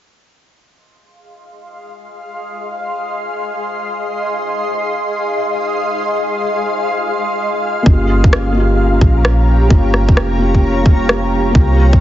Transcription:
0.47 ambient pad G#4 D#5 F5 C6
4.17 ambient pad F5
7.82 808-style bass G1, felt piano A#3 C#4, ambient pad G4 C#5 A#5, kick
7.88 felt piano F4 G4
8.24 kick
8.33 cross-stick
8.52 felt piano A#3 C#4
8.57 felt piano F4 G4
9.01 808-style bass A#1, kick
9.25 cross-stick
9.68 808-style bass G1, felt piano A#3 C#4 F4, kick
9.72 felt piano G4
9.94 cross-stick
10.09 808-style bass F1, kick
10.17 cross-stick
10.38 felt piano A#3 C#4 F4 G4
10.55 kick
10.82 felt piano A#3 C#4, kick
10.90 felt piano G4
11.09 cross-stick
11.51 felt piano A#3 C4
11.55 808-style bass C2, felt piano F4 G4, ambient pad C5 F5 A#5, kick
11.93 808-style bass A#1, kick

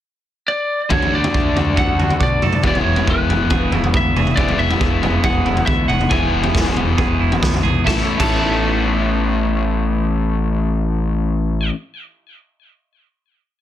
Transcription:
0.48 lead electric guitar D5
0.89 fingered electric bass D2, overdriven electric guitar D3 A3 D4 F#4, clean electric guitar D3, lead electric guitar C#5, kick, floor tom
1.02 floor tom
1.12 fingered electric bass D2, clean electric guitar D4, lead electric guitar D5
1.24 floor tom
1.34 fingered electric bass D2, clean electric guitar A3, kick
1.55 fingered electric bass D2, clean electric guitar D4, floor tom
1.76 fingered electric bass D2, clean electric guitar A4, lead electric guitar F#5, kick, floor tom
1.99 fingered electric bass D2, clean electric guitar F#4, floor tom
2.10 floor tom
2.20 fingered electric bass B2, clean electric guitar D4, lead electric guitar D5, kick
2.42 fingered electric bass F#2, clean electric guitar A4, mid tom
2.53 mid tom
2.63 fingered electric bass E1, overdriven electric guitar E3 G#3 B3 E4, clean electric guitar E3, kick, floor tom
2.67 lead electric guitar C#5
2.75 floor tom
2.85 fingered electric bass E1, clean electric guitar B3
2.96 floor tom
3.07 fingered electric bass E1, clean electric guitar G#3, lead electric guitar B4, kick
3.28 fingered electric bass E1, clean electric guitar B3, floor tom
3.50 fingered electric bass E1, clean electric guitar G#4, kick, floor tom
3.72 fingered electric bass E1, clean electric guitar E4, floor tom
3.84 floor tom
3.94 fingered electric bass D2, clean electric guitar B3, lead electric guitar E5, kick
4.15 fingered electric bass E1, clean electric guitar G#4, mid tom
4.27 mid tom
4.36 fingered electric bass E1, overdriven electric guitar E3 G#3 B3 E4, clean electric guitar E3, lead electric guitar D5, kick, floor tom
4.49 floor tom
4.58 fingered electric bass E1, clean electric guitar B3, lead electric guitar E5
4.71 floor tom
4.80 fingered electric bass E1, clean electric guitar G#3, kick
5.01 fingered electric bass E1, clean electric guitar B3, floor tom
5.24 fingered electric bass E1, clean electric guitar G#4, lead electric guitar F#5, kick, floor tom
5.45 fingered electric bass E1, clean electric guitar E4, floor tom
5.57 floor tom
5.66 fingered electric bass D2, clean electric guitar B3, lead electric guitar E5, kick
5.88 fingered electric bass E1, clean electric guitar G#4, lead electric guitar F#5, mid tom
6.01 mid tom
6.10 fingered electric bass E1, overdriven electric guitar E3 G#3 B3 E4, clean electric guitar E3, lead electric guitar G#5, kick, floor tom
6.33 fingered electric bass E1, clean electric guitar B3
6.44 floor tom
6.54 fingered electric bass E1, clean electric guitar G#3, kick, snare
6.66 floor tom
6.77 fingered electric bass E1, clean electric guitar B3, floor tom
6.98 fingered electric bass E1, clean electric guitar G#4, kick, floor tom
7.20 fingered electric bass E1, clean electric guitar E4
7.32 floor tom
7.42 fingered electric bass D2, clean electric guitar B3, kick, snare
7.54 floor tom
7.63 fingered electric bass B1, clean electric guitar G#4, mid tom
7.84 fingered electric bass A1, overdriven electric guitar A2 E3, clean electric guitar A3 B3 E4 A4, lead electric guitar A5, kick, snare
7.88 overdriven electric guitar A3 C#4 E4, clean electric guitar C#5
8.17 fingered electric bass A1, overdriven electric guitar A2 E3 A3, clean electric guitar A3 B3 E4 A4, lead electric guitar A5, kick, crash
8.21 overdriven electric guitar C#4 E4, clean electric guitar C#5

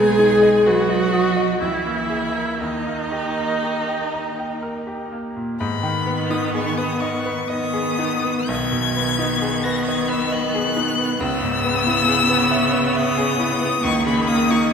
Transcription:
Already playing: grand piano B1 B3, cello G#3, viola G#4, violin G#5
0.19 grand piano D#4
0.43 grand piano D#5
0.65 cello F#3, viola F#4, grand piano B4, violin F#5
0.89 grand piano D#5
1.13 grand piano D#6
1.37 grand piano D#5
1.60 grand piano C#2, cello E3, viola E4, violin E5
1.86 grand piano A#3
2.10 grand piano G#4
2.35 grand piano A#4
2.60 grand piano D#2, cello D#3, viola D#4, violin D#5
2.87 grand piano A#3
3.12 grand piano G4
3.37 grand piano A#4
3.63 grand piano G4
3.88 grand piano G5
4.14 grand piano A#5
4.39 grand piano G5
4.62 grand piano A#4
4.87 grand piano G4
5.12 grand piano A#3
5.36 grand piano A#2
5.59 grand piano G#2, cello D#3, viola B3, violin B5
5.83 grand piano D#3
6.06 grand piano B3
6.30 grand piano D#4, violin D#6
6.54 grand piano G#4, violin C#6
6.78 grand piano B4, violin D#6
7.00 grand piano D#5, violin C#6
7.25 grand piano B4
7.48 cello D#3, viola B3, grand piano D#5, violin D#6
7.73 grand piano G#4
7.99 grand piano D#4
8.25 grand piano B3
8.47 grand piano B1, cello D#3, viola B3, violin G#6
8.72 grand piano B2
8.96 grand piano B3
9.19 grand piano D#4
9.42 grand piano G#4
9.64 grand piano B4, violin A#6
9.85 grand piano D#5, violin G#6
10.09 grand piano B4, violin E6
10.31 grand piano D#5, violin F#6
10.55 grand piano G#4
10.77 grand piano D#4
10.98 grand piano B3
11.20 grand piano C#2, cello C#3, viola B3, violin E6
11.42 grand piano G#2
11.64 grand piano B3
11.86 grand piano E4
12.08 grand piano G#4
12.29 grand piano B4
12.51 grand piano E5
12.73 grand piano B4
12.95 grand piano E5, violin D#6
13.17 grand piano G#4
13.38 grand piano E4
13.61 grand piano B3
13.83 grand piano C#2, cello D#3, viola A#3, violin C#6
14.06 grand piano C#3, violin B5
14.28 grand piano A#3, violin D#6
14.51 grand piano D#4, violin C#6

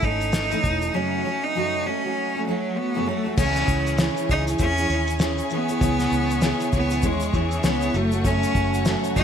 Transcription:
0.02 fingered electric bass G#1, steel-string acoustic guitar A3 C#4 A4, cello D#4, kick, shaker
0.20 shaker
0.33 snare, shaker
0.50 steel-string acoustic guitar A2 E3 A3 C#4 E4 A4, shaker
0.63 fingered electric bass E1, steel-string acoustic guitar A3 C#4 E4 A4, kick, shaker
0.81 steel-string acoustic guitar A3 C#4 E4 A4, shaker
0.93 steel-string acoustic guitar F#2 C#3 F#3 A3 C#4 F#4, cello C#4
1.24 steel-string acoustic guitar F#3 A3 C#4 F#4
1.44 cello D#4
1.55 steel-string acoustic guitar F#2 C#3 F#3 A3 C#4 F#4
1.85 steel-string acoustic guitar F#3 A3 C#4 F#4, cello C#4
2.04 steel-string acoustic guitar F#3 A3 C#4 F#4
2.35 steel-string acoustic guitar F#3 A3 C#4 F#4
2.46 steel-string acoustic guitar F#3 A3 C#4 F#4, cello F#3
2.77 cello B3
2.94 steel-string acoustic guitar F#2 C#3 F#3 A3 C#4 F#4
3.06 steel-string acoustic guitar F#3 A3 C#4 F#4, cello A3
3.24 steel-string acoustic guitar F#3 A3 C#4 F#4
3.36 fingered electric bass C#2, steel-string acoustic guitar C#3 E3 C#4 E4 G#4, cello C#4, string section G#4 C#5 G#5 C#6, kick, crash, shaker
3.56 snare, shaker
3.68 fingered electric bass C#2, kick, shaker
3.87 shaker
3.98 steel-string acoustic guitar C#3 E3 C#4 E4 G#4, snare, shaker
4.17 shaker
4.29 fingered electric bass C#2, steel-string acoustic guitar E3 C#4 E4 G#4, cello D#4, kick, shaker
4.47 steel-string acoustic guitar C#4 E4 G#4, shaker
4.59 fingered electric bass E2, steel-string acoustic guitar E3 C#4 E4 G#4, cello C#4, kick, shaker
4.77 steel-string acoustic guitar C#4 E4 G#4, shaker
4.90 fingered electric bass D#2, steel-string acoustic guitar C#4 E4 G#4, shaker
5.07 shaker
5.10 shaker
5.19 steel-string acoustic guitar C#3 C#4 E4, snare, shaker
5.21 steel-string acoustic guitar G#4, shaker
5.38 shaker
5.39 shaker
5.50 steel-string acoustic guitar E3 C#4 E4 G#4, cello B3, shaker
5.68 steel-string acoustic guitar C#4 E4 G#4, shaker
5.81 fingered electric bass C#2, steel-string acoustic guitar C#3 E3 C#4 E4 G#4, kick, shaker
5.99 snare, shaker
6.11 fingered electric bass C#2, shaker
6.30 shaker
6.41 steel-string acoustic guitar C#3 E3 C#4 E4 G#4, snare, shaker
6.60 shaker
6.72 fingered electric bass C#2, steel-string acoustic guitar E3 C#4 E4 G#4, cello B3, kick, shaker
6.89 steel-string acoustic guitar C#4 E4 G#4, shaker
7.02 fingered electric bass D#2, steel-string acoustic guitar E3 C#4 E4 G#4, cello G#3, kick, shaker
7.20 steel-string acoustic guitar E4 G#4, shaker
7.22 steel-string acoustic guitar C#4, shaker
7.33 fingered electric bass E2, steel-string acoustic guitar E3 C#4 E4 G#4, cello E3, kick, shaker
7.51 shaker
7.63 fingered electric bass C#2, steel-string acoustic guitar C#3 E3 C#4 E4 G#4, cello B3, snare, shaker
7.81 shaker
7.93 fingered electric bass F#1, steel-string acoustic guitar F#3 A3 C#4 F#4, cello A3, string section A4 F#5, shaker
8.11 steel-string acoustic guitar F#3 A3 C#4 F#4, shaker
8.24 steel-string acoustic guitar F#2 C#3 F#3 A3 C#4 F#4, cello C#4, kick, shaker
8.43 shaker
8.55 fingered electric bass F#1, kick, shaker
8.74 shaker
8.85 steel-string acoustic guitar F#2 C#3 F#3 A3 C#4 F#4, snare, shaker
9.04 shaker
9.15 fingered electric bass F#1, steel-string acoustic guitar F#3 A3 C#4 F#4, cello D#4, kick, shaker

